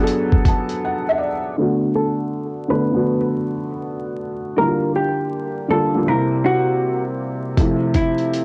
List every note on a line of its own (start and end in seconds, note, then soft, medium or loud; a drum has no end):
0.00 1.59 F#3 medium
0.00 1.59 B3 medium
0.00 1.59 D4 medium
0.00 1.59 G#4 medium
0.00 0.03 A4 loud
0.00 1.32 A4 medium
0.00 1.59 B4 medium
0.07 closed hi-hat medium
0.32 kick loud
0.45 0.81 A5 medium
0.45 kick medium
0.45 closed hi-hat medium
0.69 closed hi-hat soft
0.85 1.06 F#5 medium
1.09 1.20 E5 medium
1.18 1.54 D5 medium
1.58 2.63 D3 medium
1.58 2.64 A3 medium
1.58 2.65 B3 medium
1.58 2.65 F#4 medium
1.96 2.66 A4 medium
2.68 2.91 D3 medium
2.68 2.92 A3 medium
2.68 2.93 B3 medium
2.68 2.93 A4 medium
2.68 3.28 B4 medium
2.92 4.27 D3 medium
2.92 4.28 A3 medium
2.92 4.28 B3 medium
2.92 4.29 F#4 medium
4.57 5.63 D3 medium
4.57 5.63 G3 medium
4.57 5.64 A#3 medium
4.57 4.67 E4 medium
4.57 4.91 A#4 medium
4.67 5.68 F4 medium
4.96 5.66 G4 medium
5.68 5.91 D3 medium
5.68 5.92 G3 medium
5.68 5.93 A#3 medium
5.68 5.93 F4 medium
5.68 6.08 A4 medium
5.94 6.07 D3 medium
5.94 6.06 G3 medium
5.94 6.07 A#3 medium
5.94 6.09 F4 medium
6.06 7.48 C3 medium
6.06 7.49 G3 medium
6.06 7.49 A#3 medium
6.06 7.50 E4 medium
6.06 6.41 A#4 medium
6.46 7.03 F#4 medium
7.57 8.45 C3 medium
7.57 8.45 F3 medium
7.57 8.45 A3 medium
7.57 8.45 E4 medium
7.57 kick loud
7.57 closed hi-hat medium
7.94 8.45 E4 medium
7.94 kick medium
7.94 closed hi-hat medium
8.18 closed hi-hat soft
8.33 closed hi-hat medium